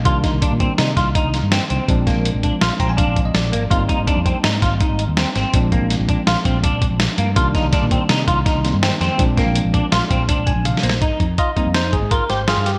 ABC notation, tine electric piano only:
X:1
M:5/4
L:1/16
Q:1/4=164
K:Ablyd
V:1 name="Tine electric piano"
z16 z4 | z8 z2 b a f3 e d4 | z16 z4 | z16 z4 |
z16 z4 | z12 z2 a2 f2 c2 | z4 e4 c2 A2 B2 c2 A2 G2 |]
V:2 name="Tine electric piano"
[E,G,B,D]16- [E,G,B,D]4 | [F,A,CD]16- [F,A,CD]4 | [G,B,CE]16- [G,B,CE]4 | [F,A,CD]16- [F,A,CD]4 |
[E,G,B,D]12- [E,G,B,D]2 [E,G,B,C]6 | [F,A,CD]16- [F,A,CD]4 | z6 [G,B,C]2 z12 |]